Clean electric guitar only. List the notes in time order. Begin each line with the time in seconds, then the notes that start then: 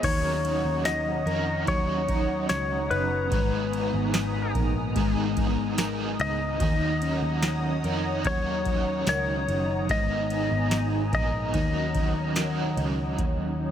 Already playing: B3 F4
0.04 D#3
0.45 C#4
0.85 D#4
1.26 A#4
1.67 F#3
2.08 D#4
2.90 D#4
3.32 G#2
3.73 B3
4.14 D#4
4.55 A#4
4.96 G#3
5.37 D#4
5.78 A#4
6.19 D#4
6.61 D#3
7.02 C#4
7.43 D#4
7.84 A#4
8.25 F#3
8.67 D#4
9.08 A#4
9.48 D#4
9.90 G#2
10.31 B3
10.71 D#4
11.12 A#4
11.54 D#3
11.95 D#4
12.36 A#4
12.77 D#4
13.18 D#3
13.59 D#4